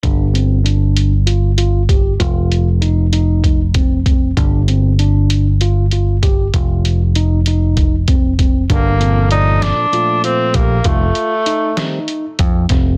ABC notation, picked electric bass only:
X:1
M:7/8
L:1/8
Q:1/4=97
K:Gm
V:1 name="Picked electric bass" clef=bass
G,,,6- G,,, | F,,,6- F,,, | G,,,6- G,,, | F,,,6- F,,, |
G,,,4 z2 B,,, | F,,, z4 F,, F,,, |]